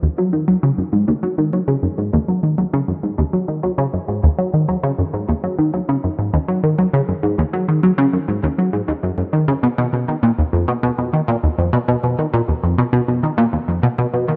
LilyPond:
\new Staff \with { instrumentName = "Synth arpeggio sound" } { \clef bass \time 4/4 \key ees \minor \tempo 4 = 100 ees,16 ges16 ees16 ges16 des16 ges,16 aes,16 ees,16 ges16 ees16 ges16 des16 ges,16 aes,16 ees,16 ges16 | ees16 ges16 des16 ges,16 aes,16 ees,16 ges16 ees16 ges16 des16 ges,16 aes,16 ees,16 ges16 ees16 ges16 | des16 ges,16 aes,16 ees,16 ges16 ees16 ges16 des16 ges,16 aes,16 ees,16 ges16 ees16 ges16 des16 ges,16 | aes,16 ees,16 ges16 ees16 ges16 des16 ges,16 aes,16 ees,16 ges16 aes,16 ees,16 ges,16 ges,16 ees16 des16 |
b,16 b,16 b,16 dis16 ais,16 dis,16 eis,16 b,16 b,16 b,16 dis16 ais,16 dis,16 eis,16 b,16 b,16 | b,16 dis16 ais,16 dis,16 eis,16 b,16 b,16 b,16 dis16 ais,16 dis,16 eis,16 b,16 b,16 b,16 dis16 | }